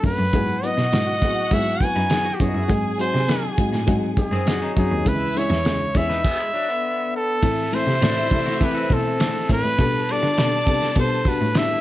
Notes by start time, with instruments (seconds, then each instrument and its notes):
0.03 cello F#2, upright piano F#3 A3 C#4 A4, trumpet B4, kick, open hi-hat
0.19 cello F#2
0.33 cello G#2, upright piano F#3 B3 E4 G#4, string section F#4 F#5, kick, closed hi-hat
0.62 upright piano F#3 B3 E4 B4, trumpet D#5, closed hi-hat
0.78 cello B2, snare, closed hi-hat
0.92 cello G#2, upright piano F#3 B3 E4 F#4, snare, closed hi-hat
1.22 cello A2, upright piano F#3 B3 E4 G#4, kick, closed hi-hat
1.51 cello G#2, upright piano F#3 B3 E4 G#4, trumpet E5, kick, closed hi-hat
1.81 upright piano F#3 B3 E4 B4, trumpet G#5, kick, closed hi-hat
1.96 cello F#2, clean electric guitar D#4 B4
2.10 upright piano F#3 B3 E4 G#4, clean electric guitar B3 G#4, snare, closed hi-hat
2.25 clean electric guitar F#4
2.35 trumpet G4
2.40 cello F#2, upright piano F#3 B3 E4 G#4, string section C#4 C#5, trumpet G#4, kick, closed hi-hat
2.48 string section D#4 D#5
2.55 cello F#2, string section E4 E5
2.63 string section F#4 F#5
2.68 cello G#2, upright piano F#3 C4 D#4 G#4, string section G#4 G#5, kick, closed hi-hat
2.98 upright piano F#3 C4 D#4 F#4, trumpet C5, closed hi-hat
3.14 cello C3, snare
3.28 upright piano F#3 C4 D#4 G#4, snare, closed hi-hat
3.58 cello G#2, upright piano F#3 C4 D#4 F#4, kick, closed hi-hat
3.73 cello A2, snare, closed hi-hat
3.87 cello G#2, upright piano F#3 C4 D#4 F#4, kick, closed hi-hat
4.17 upright piano F#3 C4 D#4 G#4, trumpet G#4, kick, closed hi-hat
4.31 cello F#2, clean electric guitar C4 G#4
4.46 upright piano F#3 C4 D#4 G#4, clean electric guitar F#4, snare, closed hi-hat
4.62 clean electric guitar F#3 D#4
4.76 cello F#2, upright piano F#3 C4 D#4 F#4, trumpet G#4, kick, closed hi-hat
4.91 cello D#2
5.05 cello C#2, upright piano E3 G#3 C#4 G#4, string section E4 E5, trumpet B4, kick, closed hi-hat
5.35 upright piano E3 G#3 C#4 G#4, trumpet C#5, closed hi-hat
5.50 cello E2, snare
5.64 cello C#2, upright piano E3 G#3 C#4 G#4, snare, closed hi-hat
5.94 cello E2, upright piano E3 G#3 C#4 G#4, clean electric guitar E4 C#5, trumpet E5, kick, closed hi-hat
6.10 clean electric guitar D#4 B4, snare
6.24 clean electric guitar B3 G#4, kick, crash
6.39 clean electric guitar G#3 E4
6.53 clean electric guitar F#3 D4
6.68 clean electric guitar D3 B3
7.16 trumpet A4
7.42 cello A2, upright piano E3 A3 C4 A4, string section E4 E5, kick, ride
7.72 upright piano E3 A3 C4 A4, trumpet C5, ride
7.87 cello C3, snare
8.01 cello A2, upright piano E3 A3 C4 A4, clean electric guitar F#3 D4, snare, ride
8.16 clean electric guitar G3 E4
8.31 cello C3, upright piano E3 A3 C4 A4, kick, ride
8.46 clean electric guitar A3 F#4, snare
8.61 upright piano E3 A3 C4 A4, clean electric guitar B3 G4, trumpet B4, kick, ride
8.74 clean electric guitar C4 A4
8.90 cello B2, upright piano E3 A3 C4 C5, trumpet A4, kick, ride
9.19 upright piano E3 A3 C4 A4, snare, ride
9.49 cello A2, upright piano E3 A3 C4 A4, trumpet B4, kick, open hi-hat, ride
9.64 cello A2
9.78 cello B2, upright piano G3 B3 D4 A4, string section A4 A5, kick, hi-hat pedal, ride
10.08 upright piano G3 B3 D4 A4, trumpet D5, ride
10.23 cello D3, ride
10.37 cello B2, upright piano G3 B3 D4 A4, snare, ride
10.66 cello C3, upright piano G3 B3 D4 A4, kick, ride
10.82 snare, ride
10.95 cello B2, upright piano G3 B3 D4 A4, kick, ride
11.00 trumpet C5
11.25 upright piano G3 B3 D4 F#4, trumpet B4, kick, ride
11.41 cello A2
11.54 upright piano G3 B3 D4 E4, trumpet E5, snare, ride